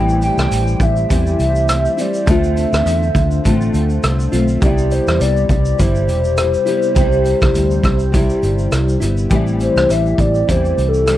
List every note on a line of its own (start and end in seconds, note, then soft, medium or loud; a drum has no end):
0.00 0.29 A1 medium
0.00 1.09 A2 medium
0.00 1.07 E3 medium
0.00 1.09 G3 medium
0.00 2.24 A3 medium
0.00 1.10 C4 medium
0.00 1.11 E4 medium
0.00 2.23 E4 medium
0.00 2.25 G4 medium
0.00 4.58 C5 medium
0.00 0.20 G5 loud
0.09 shaker medium
0.22 0.84 G5 loud
0.22 closed hi-hat medium
0.22 shaker medium
0.37 0.48 C2 medium
0.37 cross-stick loud
0.37 shaker medium
0.51 0.75 A1 loud
0.51 closed hi-hat medium
0.51 shaker medium
0.67 shaker soft
0.80 1.04 A1 medium
0.80 1.11 E5 loud
0.80 kick medium
0.80 closed hi-hat soft
0.80 shaker soft
0.97 shaker medium
1.09 1.34 E2 medium
1.09 1.97 E3 medium
1.09 1.98 G3 medium
1.09 1.99 C4 medium
1.09 1.96 E4 medium
1.09 2.01 E5 loud
1.09 kick medium
1.09 closed hi-hat medium
1.09 shaker medium
1.27 shaker medium
1.39 1.86 C2 medium
1.39 closed hi-hat soft
1.39 shaker soft
1.55 shaker medium
1.69 cross-stick medium
1.69 closed hi-hat medium
1.69 shaker medium
1.85 shaker medium
1.97 2.27 G3 soft
1.97 2.28 C4 soft
1.97 2.27 E4 medium
1.97 2.31 D5 medium
1.97 closed hi-hat medium
1.97 shaker medium
2.14 shaker medium
2.26 2.64 D2 medium
2.26 3.43 D3 medium
2.26 4.59 D3 medium
2.26 3.44 A3 medium
2.26 3.46 C4 medium
2.26 4.59 D4 medium
2.26 4.60 F4 medium
2.26 4.04 E5 loud
2.26 kick loud
2.26 closed hi-hat medium
2.26 shaker medium
2.31 3.46 F4 medium
2.44 shaker medium
2.57 closed hi-hat medium
2.57 shaker medium
2.73 2.83 D2 medium
2.73 cross-stick loud
2.73 shaker medium
2.86 3.09 E2 loud
2.86 closed hi-hat medium
2.86 shaker medium
3.03 shaker soft
3.15 3.38 D2 medium
3.15 kick medium
3.15 closed hi-hat soft
3.15 shaker soft
3.31 shaker soft
3.44 3.68 A1 medium
3.44 4.32 D3 medium
3.44 4.33 A3 medium
3.44 4.33 C4 medium
3.44 4.31 F4 medium
3.44 kick medium
3.44 closed hi-hat medium
3.44 shaker medium
3.61 shaker soft
3.74 3.97 D2 medium
3.74 closed hi-hat soft
3.74 shaker soft
3.90 shaker soft
4.03 4.27 C2 medium
4.03 cross-stick medium
4.03 closed hi-hat medium
4.03 shaker medium
4.20 shaker medium
4.32 4.56 B1 loud
4.32 4.62 A3 medium
4.32 4.62 C4 medium
4.32 4.61 F4 medium
4.32 closed hi-hat medium
4.32 shaker medium
4.48 shaker medium
4.61 4.98 C2 loud
4.61 5.77 C3 medium
4.61 9.27 C3 medium
4.61 9.27 G3 medium
4.61 5.79 G3 medium
4.61 5.80 B3 medium
4.61 9.27 E4 medium
4.61 6.94 G4 medium
4.61 4.93 D5 loud
4.61 kick loud
4.61 closed hi-hat medium
4.61 shaker medium
4.66 5.81 E4 medium
4.78 shaker medium
4.91 5.23 C5 loud
4.91 closed hi-hat medium
4.91 shaker medium
5.07 5.18 E2 medium
5.07 cross-stick loud
5.07 shaker medium
5.20 5.44 C2 loud
5.20 5.50 D5 loud
5.20 closed hi-hat medium
5.20 shaker medium
5.37 shaker soft
5.49 5.73 C2 medium
5.49 5.81 D5 medium
5.49 kick medium
5.49 closed hi-hat soft
5.49 shaker soft
5.65 shaker medium
5.78 6.08 G1 loud
5.78 6.66 C3 medium
5.78 6.69 G3 medium
5.78 6.65 E4 medium
5.78 8.72 C5 loud
5.78 kick medium
5.78 closed hi-hat medium
5.78 shaker medium
5.95 shaker medium
6.08 6.55 E1 medium
6.08 closed hi-hat medium
6.08 shaker soft
6.24 shaker medium
6.37 cross-stick medium
6.37 closed hi-hat medium
6.37 shaker medium
6.54 shaker medium
6.66 6.96 G3 medium
6.66 6.96 B3 soft
6.66 6.96 E4 medium
6.66 closed hi-hat medium
6.66 shaker medium
6.82 shaker medium
6.95 7.32 C2 loud
6.95 8.11 C3 medium
6.95 8.13 G3 medium
6.95 9.29 C5 medium
6.95 kick loud
6.95 closed hi-hat medium
6.95 shaker medium
7.00 8.15 E4 loud
7.12 shaker soft
7.25 closed hi-hat soft
7.25 shaker soft
7.42 7.52 C2 loud
7.42 kick medium
7.42 cross-stick medium
7.42 shaker medium
7.55 7.78 D2 loud
7.55 closed hi-hat medium
7.55 shaker medium
7.71 shaker soft
7.83 8.31 C2 medium
7.83 kick medium
7.83 cross-stick medium
7.83 closed hi-hat soft
7.83 shaker soft
7.99 shaker medium
8.12 9.01 C3 medium
8.12 9.03 G3 medium
8.12 9.00 E4 medium
8.12 kick medium
8.12 closed hi-hat medium
8.12 shaker medium
8.30 shaker soft
8.43 8.66 G1 medium
8.43 closed hi-hat soft
8.43 shaker soft
8.59 shaker soft
8.72 8.95 C2 medium
8.72 cross-stick medium
8.72 closed hi-hat medium
8.72 shaker medium
8.89 shaker medium
9.00 9.25 G1 medium
9.00 9.31 G3 soft
9.00 9.31 B3 medium
9.00 9.30 E4 medium
9.00 closed hi-hat medium
9.00 shaker medium
9.17 shaker medium
9.30 9.67 A1 medium
9.30 10.48 A2 medium
9.30 10.46 E3 medium
9.30 10.47 G3 medium
9.30 11.18 A3 medium
9.30 11.18 C4 medium
9.30 10.49 C4 medium
9.30 11.18 G4 medium
9.30 kick loud
9.30 closed hi-hat medium
9.30 shaker medium
9.34 10.49 E4 medium
9.47 shaker soft
9.60 9.92 C5 loud
9.60 closed hi-hat soft
9.60 shaker medium
9.76 9.87 C2 medium
9.76 cross-stick loud
9.76 shaker medium
9.90 10.13 A1 loud
9.90 10.22 E5 loud
9.90 closed hi-hat medium
9.90 shaker medium
10.06 shaker soft
10.18 10.42 A1 medium
10.18 10.51 D5 loud
10.18 kick medium
10.18 closed hi-hat soft
10.18 shaker soft
10.35 shaker soft
10.47 10.72 E2 medium
10.47 11.05 E3 medium
10.47 11.06 G3 medium
10.47 11.08 C4 medium
10.47 11.08 E4 medium
10.47 10.90 C5 loud
10.47 kick medium
10.47 closed hi-hat medium
10.47 shaker medium
10.65 shaker soft
10.78 11.18 C2 medium
10.78 closed hi-hat soft
10.78 shaker soft
10.88 11.18 A4 medium
10.94 shaker soft
11.06 11.18 E3 medium
11.06 11.18 G3 medium
11.06 11.18 C4 medium
11.06 11.18 E4 medium
11.06 cross-stick medium
11.06 closed hi-hat medium
11.06 shaker medium